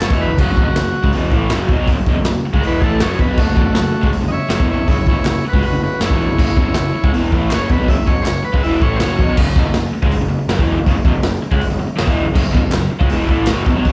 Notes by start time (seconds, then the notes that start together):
0.00 F#1 F#2 C#3 C#5, snare, clap, open hi-hat
0.10 E1 E2 B2 E3, kick
0.21 B4
0.28 F#1 F#2 C#3
0.38 F#1 F#2 C#3 F#4, kick, crash
0.46 F#1
0.51 F#2 C#3
0.57 E1 E2, kick
0.62 F#1 B2
0.68 F#2 C#3
0.76 F#1 F#2 C#3, snare, clap, open hi-hat
0.94 muted overdriven electric guitar stroke, muted picked electric bass stroke
1.04 C#2 C#3 G#3, kick
1.13 E1 E2 B2 E3, open hi-hat
1.31 A1 A2 E3 A3, kick
1.50 F#1 F#2 C#3 F#3, snare, clap, open hi-hat
1.68 E1 E2 B2, kick
1.77 B1 B2 F#3
1.87 F#1 F#2 C#3, kick, open hi-hat
1.96 F#1 F#2 C#3
2.06 E1 E2 B2, kick
2.14 F#1
2.19 F#2 C#3
2.23 F#1 F#2 C#3, snare, clap, open hi-hat
2.42 muted picked electric bass stroke
2.47 muted overdriven electric guitar stroke
2.53 C#2 C#3 G#3, kick
2.61 E1 E2 A#4, open hi-hat
2.65 B2 E3 B4
2.80 A1 A2 E3 G#4 A4, kick
2.84 A3
2.99 F#1 F#2 C#3 F#3 C#5, snare, clap, open hi-hat
3.19 E1 E2 B2 B4, kick
3.27 B1 B2 F#3
3.37 F#1 F#2 C#3 A3 F#4, kick, crash
3.46 F#1 F#2 C#3
3.54 E1 E2 B2, kick
3.65 F#1 F#2 C#3
3.72 F#1 F#2 C#3, snare, open hi-hat
3.77 clap
3.92 muted overdriven electric guitar stroke, muted picked electric bass stroke
4.02 C#2 C#3 G#3, kick
4.11 F#1 F#2 C#3, open hi-hat
4.21 F#1 F#2 C#3
4.28 F#1 F#2 C#3 D#5
4.32 C#5 E5
4.40 muted picked electric bass stroke, muted overdriven electric guitar stroke
4.49 F#1 F#2 C#3 C#5 E5, snare, clap, open hi-hat
4.60 E1 E2 B2 E3, kick
4.70 C#5 E5
4.76 F#1 F#2 C#3
4.87 F#1 F#2 C#3 E4, kick, open hi-hat
4.91 C#5
4.97 F#1 F#2 C#3
5.06 E1 E2 B2 E4 C#5, kick
5.15 F#1 F#2 C#3
5.23 F#1 F#2 C#3, snare, clap, open hi-hat
5.29 E4 C#5
5.43 muted picked electric bass stroke, muted overdriven electric guitar stroke
5.48 F#4 B4
5.53 C#2 C#3 G#3, kick
5.63 F#1 F#2 C#3 F#4 B4, open hi-hat
5.72 F#1 F#2 C#3
5.82 F#1 F#2 C#3 F#4 B4
5.91 muted picked electric bass stroke, muted overdriven electric guitar stroke
6.00 F#1 F#2 C#3, snare, clap, open hi-hat
6.05 E4 C#5
6.10 E1 E2 B2 E3, kick
6.29 F#1 F#2 C#3
6.37 F#1 F#2 C#3, kick, crash
6.48 F#1 F#2 C#3
6.56 E1 E2 B2, kick
6.66 F#1 F#2 C#3
6.74 F#1 F#2 C#3, snare, clap, open hi-hat
6.94 muted picked electric bass stroke, muted overdriven electric guitar stroke
7.03 C#2 C#3 G#3, kick
7.12 E1 E2 B2 E3, open hi-hat
7.31 A1 A2 E3 A3, kick
7.50 F#1 F#2 C#3 F#3 C5, snare, clap, open hi-hat
7.54 C#5
7.69 E1 E2 B2 B4, kick
7.78 B1 B2 F#3
7.86 F#1 F#2 C#3 E5, kick, open hi-hat
7.97 F#1 F#2 C#3
8.06 E1 E2 B2 C#5, kick
8.16 F#1 F#2 C#3
8.22 F#2 C#3 C5 C#5, clap
8.26 F#1, snare, open hi-hat
8.43 B4, muted overdriven electric guitar stroke, muted picked electric bass stroke
8.53 C#2 C#3 G#3, kick
8.62 E1 E2 B2 E3 E5, open hi-hat
8.79 A1 A2 E3 A3 C#5, kick
8.96 F#1 C5
9.00 F#2 C#3 F#3 C#5, snare, clap, open hi-hat
9.18 E1 E2 B2, kick
9.27 B1 B2 F#3
9.36 F#1 F#2 C#3, kick, crash
9.46 F#1 F#2 C#3
9.56 E1 E2 B2, kick
9.66 F#1 F#2 C#3
9.74 F#1 F#2 C#3, snare, open hi-hat
9.93 muted picked electric bass stroke, muted overdriven electric guitar stroke
10.02 C#2 C#3 G#3, kick
10.11 F#1 F#2 C#3, open hi-hat
10.21 F#1 F#2 C#3
10.28 F#1 F#2 C#3
10.39 muted overdriven electric guitar stroke, muted picked electric bass stroke
10.47 F#1 F#2 C#3, snare, open hi-hat
10.57 E1 E2 B2 E3, kick
10.76 F#1 F#2 C#3
10.86 F#1 F#2 C#3, kick, open hi-hat
10.95 F#1 F#2 C#3
11.05 E1 E2 B2, kick
11.13 F#1 F#2 C#3
11.22 F#1 F#2 C#3, snare, open hi-hat
11.42 muted picked electric bass stroke, muted overdriven electric guitar stroke
11.51 C#2 C#3 G#3, kick
11.61 F#1 F#2 C#3, open hi-hat
11.70 F#1 F#2 C#3
11.79 F#1 F#2 C#3
11.88 muted overdriven electric guitar stroke, muted picked electric bass stroke
11.96 F#1 F#2 C#3, snare, open hi-hat
12.04 E1 E2 B2 E3, kick
12.23 F#1 F#2 C#3
12.34 F#1 F#2 C#3, kick, crash
12.44 F#1 F#2 C#3
12.52 E1 E2 B2, kick
12.61 F#1 F#2 C#3
12.71 F#1 F#2 C#3, snare, clap, open hi-hat
12.91 muted overdriven electric guitar stroke, muted picked electric bass stroke
12.99 C#2 C#3 G#3, kick
13.10 E1 E2 B2 E3, open hi-hat
13.28 A1 A2 E3 A3, kick
13.47 F#1 F#2 C#3 F#3, snare, clap, open hi-hat
13.66 E1 E2 B2, kick
13.75 B1 B2 F#3
13.85 F#1 F#2 C#3, kick, open hi-hat